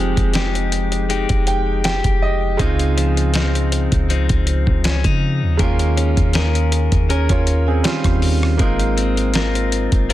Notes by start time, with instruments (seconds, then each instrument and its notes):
Already playing: 808-style bass F1, clean electric guitar F3 G#3 C4 G4, grand piano G#3 C4 D#4 G4
0.17 808-style bass F1, kick, closed hi-hat
0.34 clean electric guitar G#3 D#4 G4, snare, closed hi-hat
0.55 closed hi-hat
0.72 closed hi-hat
0.92 closed hi-hat
1.09 clean electric guitar G#3 D#4 G4, closed hi-hat
1.29 808-style bass F1, kick, closed hi-hat
1.47 grand piano G5, closed hi-hat
1.84 clean electric guitar G4, grand piano G5, snare, closed hi-hat
2.04 808-style bass F1, kick, closed hi-hat
2.22 grand piano D#5
2.57 808-style bass C#2, clean electric guitar C#3 D#4, grand piano G#3 C4 D#4, kick, closed hi-hat
2.62 grand piano F4
2.79 closed hi-hat
2.97 clean electric guitar F3, closed hi-hat
3.17 closed hi-hat
3.34 clean electric guitar F3 C4 D#4, snare, closed hi-hat
3.55 closed hi-hat
3.72 closed hi-hat
3.92 808-style bass C#2, kick, closed hi-hat
4.09 clean electric guitar F3 C4 D#4, closed hi-hat
4.29 808-style bass C#2, kick, closed hi-hat
4.47 closed hi-hat
4.67 808-style bass C#2, kick
4.84 clean electric guitar C#4, snare, closed hi-hat
5.04 808-style bass C#3, clean electric guitar D#4, kick, closed hi-hat
5.42 808-style bass D#2
5.57 808-style bass D#2, clean electric guitar D#3 A#4, grand piano G#3 A#3 C#4, kick, closed hi-hat
5.63 grand piano F4
5.79 closed hi-hat
5.97 clean electric guitar C#4, closed hi-hat
6.17 808-style bass D#2, kick, closed hi-hat
6.33 clean electric guitar C#4 G#4 A#4, snare, closed hi-hat
6.55 closed hi-hat
6.72 closed hi-hat
6.92 808-style bass D#2, kick, closed hi-hat
7.09 clean electric guitar C#4 G#4 A#4, grand piano C#4 A#4, closed hi-hat
7.29 808-style bass D#2, grand piano F4 C#5, kick, closed hi-hat
7.47 closed hi-hat
7.68 grand piano C4 G#4
7.84 clean electric guitar D#3, grand piano G3 C4 C#4 F4, snare, closed hi-hat
8.04 808-style bass D#2, kick, cross-stick, closed hi-hat
8.22 open hi-hat
8.43 cross-stick
8.57 808-style bass G#1, clean electric guitar G#3 A#4, grand piano A#3 C4 D#4, kick, closed hi-hat
8.63 grand piano F4
8.79 closed hi-hat
8.97 clean electric guitar C4, closed hi-hat
9.17 closed hi-hat
9.34 clean electric guitar C4 F4 A#4, snare, closed hi-hat
9.55 closed hi-hat
9.72 closed hi-hat
9.92 808-style bass G#1, kick, closed hi-hat
10.09 clean electric guitar C4 F4, closed hi-hat